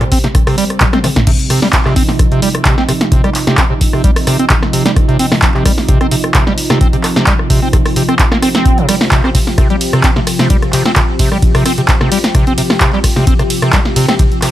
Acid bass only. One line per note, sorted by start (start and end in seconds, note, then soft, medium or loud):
0.01 0.04 A#2 loud
0.12 0.18 C4 medium
0.24 0.28 C3 medium
0.47 0.56 C3 medium
0.58 0.64 G3 medium
0.81 0.85 A#2 medium
0.93 0.99 C4 medium
1.04 1.08 C3 medium
1.27 1.31 C3 medium
1.50 1.60 C3 medium
1.62 1.68 G3 medium
1.85 1.94 C3 loud
1.96 2.03 C4 medium
2.09 2.12 C3 medium
2.32 2.41 C3 medium
2.42 2.49 G3 medium
2.65 2.76 C3 loud
2.78 2.84 C4 medium
2.89 2.93 C3 medium
3.12 3.22 C3 medium
3.24 3.30 G3 medium
3.47 3.56 C3 loud
3.58 3.65 C4 medium
3.70 3.74 C3 medium
3.93 4.02 C3 medium
4.04 4.11 G3 medium
4.27 4.37 C3 loud
4.39 4.45 C4 medium
4.50 4.54 C3 medium
4.73 4.83 C3 medium
4.86 4.91 G3 medium
5.08 5.17 C3 loud
5.19 5.26 C4 medium
5.32 5.35 C3 medium
5.55 5.64 C3 medium
5.65 5.72 G3 medium
5.89 5.99 C3 loud
6.01 6.07 C4 medium
6.12 6.16 C3 medium
6.35 6.45 C3 medium
6.47 6.53 G3 medium
6.70 6.79 C3 loud
6.81 6.88 C4 medium
6.93 6.97 C3 medium
7.16 7.25 C3 medium
7.27 7.34 G3 medium
7.50 7.60 C3 loud
7.62 7.68 C4 medium
7.73 7.77 C3 medium
7.96 8.03 C3 medium
8.09 8.14 C4 loud
8.32 8.38 A#3 medium
8.42 8.49 C4 medium
8.55 8.79 C4 medium
8.78 8.87 C3 medium
8.89 8.95 G3 medium
9.12 9.22 C3 loud
9.24 9.30 C4 medium
9.35 9.39 C3 medium
9.58 9.68 C3 medium
9.70 9.76 G3 medium
9.93 10.02 C3 loud
10.04 10.11 C4 medium
10.16 10.20 C3 medium
10.39 10.48 C3 medium
10.50 10.57 G3 medium
10.73 10.83 C3 loud
10.86 10.91 C4 medium
10.96 11.00 C3 medium
11.19 11.30 C3 medium
11.32 11.38 G3 medium
11.55 11.64 C3 loud
11.66 11.72 C4 medium
11.78 11.81 C3 medium
12.01 12.10 C3 medium
12.12 12.18 G3 medium
12.35 12.45 C3 loud
12.47 12.53 C4 medium
12.58 12.62 C3 medium
12.81 12.91 C3 medium
12.93 12.99 G3 medium
13.16 13.25 C3 loud
13.27 13.34 C4 medium
13.39 13.43 C3 medium
13.62 13.71 C3 medium
13.73 13.80 G3 medium
13.96 14.06 C3 loud
14.09 14.15 C4 medium
14.19 14.23 C3 medium
14.43 14.51 C3 medium